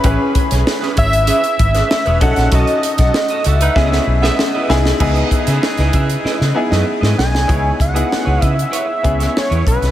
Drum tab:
CC |----------------|----------------|x---------------|----------------|
HH |x-xx--xxxxxx-xxx|xxxx-xxx--------|-xxx-xxx--------|x-xx--xxx-xx-xxx|
SD |---ooo-----oo--o|---oo---oo-oo-oo|---ooo--oo-o-ooo|----o------oo--o|
BD |o-o---o---o---o-|o--o----o-------|o-o---o---------|o-o---o---o---o-|